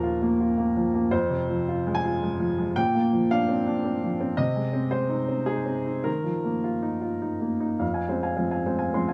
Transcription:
Already playing: D#2 A#2 F3 A#4
0.03 F4
0.22 A#3
0.40 F4
0.58 A#3
0.76 F3
0.94 A#3
1.11 F2 C5
1.30 C3
1.48 F3
1.69 F4
1.87 G#3
1.95 G#5
2.05 F4
2.23 G#3
2.40 F3
2.58 G#3
2.76 A#2 G5
2.95 A#3
3.13 F3
3.31 D4 F5
3.49 C4
3.67 D4
3.85 C4
4.03 F3
4.21 C4
4.37 C3 D#5
4.56 G#3
4.73 C4
4.91 G#3 C5
5.09 D#4
5.29 C4
5.46 D#4 G#4
5.66 C4
5.86 D#4
6.04 D#3 A#4
6.24 F3
6.44 A#3
6.64 F4
6.82 D#4
7.01 F4
7.22 D#4
7.41 A#3
7.60 D#4
7.79 F2 F5
7.93 F5 G#5
8.09 G#3 C4 C5
8.23 F5 G#5
8.36 F3 G#3 C4 F5
8.51 F5 G#5
8.66 G#3 C4 C5
8.79 F5 G#5
8.94 F3 G#3 C4 C6
9.08 F5 G#5

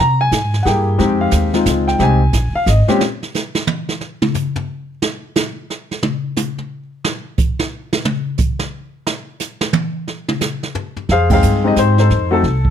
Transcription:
0.00 C3 A#5
0.21 G#5
0.31 G#2, kick, snare, hi-hat pedal
0.54 snare
0.63 G2 A#3 E4 G4 G#4 F#5, kick, snare
0.67 G5
0.98 F2 G#3 C4 D#4 G4, brush sweep, kick, snare
1.21 F5
1.31 D#2, kick, snare, hi-hat pedal
1.54 G#3 C4 D#4 F4, snare
1.66 C#2, kick, snare, hi-hat pedal
1.88 G5, snare
1.99 C2 G#3 C4 D#4 G4 G#5, brush sweep, kick, snare
2.33 A#1, kick, snare, hi-hat pedal
2.53 F5, muted upright bass stroke
2.66 G#1 D#5, kick, snare, hi-hat pedal
2.87 A#2 G#3 C4 C#4 G4, muted upright bass stroke, snare
3.01 snare
3.23 snare
3.34 snare, hi-hat pedal
3.55 snare
3.67 high tom
3.89 snare
4.01 snare
4.22 mid tom
4.34 floor tom, hi-hat pedal
4.56 floor tom
5.02 snare
5.35 snare, hi-hat pedal
5.70 snare
5.91 snare
6.03 mid tom
6.36 hi-hat pedal, mid tom
6.58 mid tom
7.04 snare
7.38 kick, hi-hat pedal
7.59 snare
7.93 snare
8.05 mid tom
8.38 kick, hi-hat pedal
8.59 snare
9.07 snare
9.40 snare, hi-hat pedal
9.61 snare
9.73 high tom
10.08 snare
10.28 mid tom
10.41 snare, hi-hat pedal
10.63 snare
10.75 floor tom
10.96 floor tom
11.09 F2 G#4 C5 F5, brush sweep, kick, snare
11.30 G#3 C4 D#4 C5 F5 G5, kick, crash
11.34 G#4
11.42 G2, hi-hat pedal
11.64 G#3 C4 D#4 G4 D#5
11.76 G#2 C5, kick, snare, hi-hat pedal
11.98 D#4 A4 C5, snare
12.10 F2, brush sweep, kick, snare
12.31 A3 C4 D#4 F#4 A4
12.43 C2, kick, snare
12.65 kick

